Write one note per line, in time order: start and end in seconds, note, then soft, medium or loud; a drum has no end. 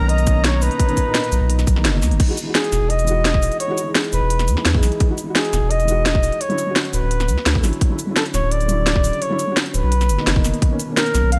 0.00 0.70 B1 medium
0.00 0.22 B2 medium
0.00 0.24 D#3 medium
0.00 2.16 D#3 medium
0.00 0.25 A#3 medium
0.00 0.26 C#4 medium
0.00 0.11 A#4 loud
0.00 2.16 A#5 medium
0.09 2.18 D#4 medium
0.09 0.46 D#5 loud
0.09 closed hi-hat medium
0.18 closed hi-hat soft
0.18 cabasa soft
0.24 0.85 B2 medium
0.24 0.86 D#3 medium
0.24 kick loud
0.24 closed hi-hat medium
0.24 cabasa medium
0.28 0.87 A#3 medium
0.28 0.88 C#4 loud
0.44 0.63 C#5 loud
0.44 snare loud
0.44 closed hi-hat medium
0.54 snare soft
0.62 1.85 B4 loud
0.62 open hi-hat medium
0.62 cabasa medium
0.71 closed hi-hat soft
0.79 kick loud
0.79 closed hi-hat loud
0.87 0.96 B2 loud
0.87 0.97 D#3 medium
0.87 0.97 A#3 medium
0.87 0.98 C#4 loud
0.87 closed hi-hat soft
0.97 kick medium
0.97 closed hi-hat medium
0.97 cabasa medium
1.03 1.64 B2 medium
1.03 1.65 D#3 medium
1.07 1.66 A#2 medium
1.07 1.67 D#4 loud
1.15 snare loud
1.15 closed hi-hat loud
1.24 closed hi-hat soft
1.32 1.40 B1 loud
1.32 closed hi-hat medium
1.32 cabasa medium
1.41 1.66 B1 medium
1.50 closed hi-hat medium
1.59 snare soft
1.59 closed hi-hat soft
1.59 cabasa soft
1.67 1.86 B1 loud
1.67 kick loud
1.67 closed hi-hat medium
1.67 cabasa medium
1.75 1.91 B2 medium
1.75 1.91 D#3 medium
1.75 1.92 A#3 medium
1.75 1.92 D#4 medium
1.75 snare soft
1.85 2.04 F#1 medium
1.85 snare loud
1.85 closed hi-hat medium
1.92 2.18 B2 medium
1.92 2.19 D#3 medium
1.92 2.19 A#3 medium
1.92 2.20 D#4 loud
2.02 2.13 D#2 medium
2.02 snare soft
2.02 open hi-hat medium
2.02 cabasa medium
2.11 2.19 F#1 loud
2.11 closed hi-hat soft
2.20 kick loud
2.20 closed hi-hat loud
2.20 crash loud
2.27 2.33 E3 medium
2.27 2.34 G#3 medium
2.27 2.34 D#4 medium
2.27 2.35 F#4 loud
2.37 closed hi-hat medium
2.37 cabasa medium
2.43 3.03 E3 medium
2.43 3.05 G#3 medium
2.48 3.06 D#4 medium
2.48 3.07 F#4 medium
2.55 2.92 G#4 loud
2.55 snare loud
2.55 closed hi-hat loud
2.64 closed hi-hat soft
2.72 2.81 E1 loud
2.72 snare soft
2.72 closed hi-hat medium
2.72 cabasa medium
2.82 3.50 E1 medium
2.90 3.60 D#5 loud
2.90 closed hi-hat medium
2.99 closed hi-hat soft
2.99 cabasa soft
3.05 3.66 E3 medium
3.05 3.67 G#3 medium
3.05 closed hi-hat medium
3.05 cabasa medium
3.09 3.68 D#4 medium
3.09 3.69 F#4 loud
3.25 snare loud
3.25 closed hi-hat medium
3.34 kick loud
3.34 snare soft
3.43 open hi-hat medium
3.43 cabasa medium
3.52 closed hi-hat soft
3.60 3.93 C#5 loud
3.60 closed hi-hat loud
3.68 3.77 E3 loud
3.68 3.77 G#3 medium
3.68 3.78 D#4 medium
3.68 3.78 F#4 loud
3.78 closed hi-hat medium
3.78 cabasa medium
3.84 4.44 E3 medium
3.84 4.45 G#3 medium
3.88 4.46 D#4 medium
3.88 4.47 G#4 medium
3.95 snare loud
3.95 closed hi-hat medium
4.04 closed hi-hat soft
4.13 4.21 E1 loud
4.13 4.79 B4 loud
4.13 closed hi-hat medium
4.13 cabasa medium
4.22 4.50 E1 medium
4.30 closed hi-hat medium
4.39 snare medium
4.39 closed hi-hat soft
4.39 cabasa soft
4.48 4.56 E2 medium
4.48 closed hi-hat medium
4.48 cabasa medium
4.55 4.71 E3 medium
4.55 4.72 G#3 medium
4.55 4.73 D#4 medium
4.55 4.73 G#4 medium
4.55 snare soft
4.65 4.81 E2 medium
4.65 snare loud
4.65 closed hi-hat loud
4.73 5.07 E3 medium
4.73 5.07 G#3 medium
4.73 5.08 D#4 medium
4.73 5.08 G#4 loud
4.73 kick loud
4.83 4.91 B1 medium
4.83 snare soft
4.83 open hi-hat medium
4.83 cabasa medium
4.92 closed hi-hat soft
5.00 kick loud
5.00 closed hi-hat medium
5.08 5.14 E3 medium
5.08 5.15 G#3 medium
5.08 5.15 D#4 medium
5.08 5.16 F#4 medium
5.18 closed hi-hat medium
5.18 cabasa medium
5.24 5.84 E3 medium
5.24 5.86 G#3 medium
5.28 5.87 D#4 medium
5.28 5.88 F#4 medium
5.35 5.72 G#4 loud
5.35 snare loud
5.35 closed hi-hat medium
5.45 closed hi-hat soft
5.53 5.61 E1 loud
5.53 snare soft
5.53 closed hi-hat medium
5.53 cabasa medium
5.62 6.31 E1 medium
5.71 6.43 D#5 loud
5.71 closed hi-hat medium
5.80 closed hi-hat soft
5.80 cabasa soft
5.85 6.38 E3 medium
5.85 6.39 G#3 medium
5.85 closed hi-hat medium
5.85 cabasa medium
5.89 6.40 D#4 medium
5.89 6.41 F#4 loud
6.06 snare loud
6.06 closed hi-hat medium
6.15 kick loud
6.15 snare soft
6.23 open hi-hat medium
6.23 cabasa medium
6.32 closed hi-hat soft
6.41 6.76 C#5 loud
6.41 closed hi-hat medium
6.48 6.58 D3 loud
6.48 6.58 F#3 medium
6.48 6.59 C#4 medium
6.48 6.59 E4 loud
6.48 closed hi-hat soft
6.58 closed hi-hat medium
6.58 cabasa medium
6.65 7.25 D3 medium
6.65 7.26 F#3 medium
6.69 7.27 C#4 medium
6.69 7.28 F#4 medium
6.76 snare loud
6.76 closed hi-hat medium
6.85 closed hi-hat soft
6.93 7.02 D1 loud
6.93 7.60 B4 loud
6.93 closed hi-hat medium
6.93 cabasa medium
7.03 7.30 D1 medium
7.11 closed hi-hat medium
7.20 snare soft
7.20 closed hi-hat soft
7.20 cabasa soft
7.29 7.37 D2 medium
7.29 closed hi-hat medium
7.29 cabasa medium
7.38 snare soft
7.46 7.62 D2 medium
7.46 snare loud
7.46 closed hi-hat medium
7.54 7.61 D3 medium
7.54 7.62 F#3 medium
7.54 7.63 C#4 medium
7.54 7.63 A4 medium
7.54 kick loud
7.62 7.72 A1 medium
7.62 7.87 D3 medium
7.62 7.88 F#3 medium
7.62 7.88 C#4 medium
7.62 7.89 E4 medium
7.62 snare soft
7.62 open hi-hat medium
7.62 cabasa medium
7.73 closed hi-hat soft
7.81 kick loud
7.81 closed hi-hat medium
7.89 7.95 D3 medium
7.89 7.95 F#3 medium
7.89 7.96 C#4 medium
7.89 7.96 E4 medium
7.99 closed hi-hat medium
7.99 cabasa medium
8.05 8.65 D3 medium
8.05 8.66 F#3 medium
8.09 8.67 C#4 medium
8.09 8.68 E4 medium
8.16 8.24 A4 medium
8.16 snare loud
8.16 closed hi-hat medium
8.26 closed hi-hat soft
8.34 8.42 D1 loud
8.34 8.53 C#5 loud
8.34 snare soft
8.34 closed hi-hat medium
8.34 cabasa medium
8.43 9.12 D1 medium
8.51 9.23 D5 loud
8.51 closed hi-hat medium
8.61 closed hi-hat soft
8.61 cabasa soft
8.66 9.27 D3 medium
8.66 9.28 F#3 medium
8.66 closed hi-hat medium
8.66 cabasa medium
8.70 9.29 C#3 medium
8.70 9.30 E4 loud
8.87 snare loud
8.87 closed hi-hat medium
8.96 kick loud
8.96 snare soft
9.04 open hi-hat medium
9.04 cabasa medium
9.13 closed hi-hat soft
9.22 9.57 C#5 loud
9.22 closed hi-hat medium
9.29 9.38 D3 loud
9.29 9.39 F#3 medium
9.29 9.39 C#4 medium
9.29 9.40 E4 loud
9.39 closed hi-hat medium
9.39 cabasa medium
9.45 9.89 D3 medium
9.45 9.90 F#3 medium
9.50 9.91 C#4 medium
9.50 9.92 F#4 medium
9.57 snare loud
9.57 closed hi-hat loud
9.66 closed hi-hat soft
9.74 9.82 D1 medium
9.74 10.41 B4 loud
9.74 closed hi-hat medium
9.74 cabasa medium
9.83 10.11 B1 medium
9.92 closed hi-hat medium
10.01 snare soft
10.01 closed hi-hat soft
10.01 cabasa soft
10.09 10.18 F#1 medium
10.09 closed hi-hat medium
10.09 cabasa medium
10.17 10.33 B2 medium
10.17 10.34 D#3 medium
10.17 10.34 A#3 medium
10.17 10.35 D#4 medium
10.17 snare soft
10.27 10.43 F#1 medium
10.27 snare loud
10.27 closed hi-hat medium
10.34 10.68 B2 medium
10.34 10.69 D#3 medium
10.34 10.69 A#3 medium
10.34 10.70 D#4 loud
10.34 kick loud
10.45 10.53 F#1 medium
10.45 snare soft
10.45 open hi-hat medium
10.45 cabasa medium
10.54 closed hi-hat soft
10.62 kick loud
10.62 closed hi-hat loud
10.70 10.76 B2 medium
10.70 10.76 D#3 medium
10.70 10.77 A#3 medium
10.70 10.77 C#4 loud
10.80 closed hi-hat medium
10.80 cabasa medium
10.86 11.39 B2 medium
10.86 11.39 D#3 medium
10.90 11.39 A#3 medium
10.90 11.39 C#4 medium
10.97 11.30 A#4 loud
10.97 snare loud
10.97 closed hi-hat loud
11.06 closed hi-hat soft
11.15 11.23 B1 loud
11.15 snare soft
11.15 closed hi-hat medium
11.15 cabasa medium
11.24 11.39 B1 medium
11.32 11.39 F5 loud
11.32 closed hi-hat medium